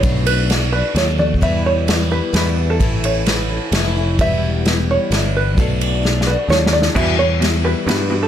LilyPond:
<<
  \new Staff \with { instrumentName = "Five-string banjo" } { \time 3/4 \key e \dorian \tempo 4 = 130 cis''8 b'4 b'8 cis''8 d''8 | e''8 cis''4 b'8 b'8. a'16~ | a'8 cis''4. r4 | e''4. cis''4 b'8 |
a'4. b'8 cis''8 d''8 | e''8 cis''4 b'8 b'8. a'16 | }
  \new Staff \with { instrumentName = "Twelve-string acoustic guitar" } { \time 3/4 \key e \dorian <b, fis a d' fis'>4 <fis a d' fis'>8 <a d' fis'>8 <fis a d' fis'>8 <a d' fis'>8 | <e, b, e g b e'>4 <e g b e'>8 <e g b e'>8 <e g b e'>8 <e g b e'>8 | <a, e a cis' e'>4 <e a cis' e'>8 <a cis' e'>8 <e a cis' e'>8 <a cis' e'>8 | <e, b, e g b e'>4 <e g b e'>4 <e g b e'>4 |
<b, fis a d' fis'>4 <fis a d' fis'>8 <a d' fis'>8 <fis a d' fis'>4 | <e, b, e g b e'>4 <e g b e'>4 <e g b e'>8 <e g b e'>8 | }
  \new Staff \with { instrumentName = "Clean electric guitar" } { \clef bass \time 3/4 \key e \dorian r2. | r2. | r2. | r2. |
r2. | <e, b, e>8 <e, b,>8 <e, b,>8 <e, b,>8 <e, b,>8 <e, b,>8 | }
  \new Staff \with { instrumentName = "Picked electric bass" } { \clef bass \time 3/4 \key e \dorian b,,2 dis,4 | e,2 e,4 | a,,2 f,,4 | e,,2 g,,4 |
b,,2 dis,4 | e,2 g,4 | }
  \new DrumStaff \with { instrumentName = "Drums" } \drummode { \time 3/4 <bd cymr>8 cymr8 <cymr sn>4 \tuplet 3/2 { <cymr sn>16 r16 r16 tommh16 r16 bd16 } | <bd cymr>4 <cymr sn>4 <cymr sn>4 | <bd cymr>8 cymr8 <cymr sn>4 <cymr sn>4 | <bd cymr>4 <cymr sn>4 <cymr sn>4 |
<bd cymr>8 cymr8 \tuplet 3/2 { sn8 sn8 r8 sn8 sn8 sn8 } | <cymc bd>4 <cymr sn>4 <cymr sn>4 | }
>>